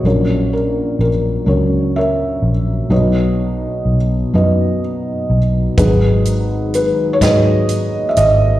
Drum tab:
HH |------|------|xxxxxx|
SD |------|------|---o--|
BD |------|------|o--o--|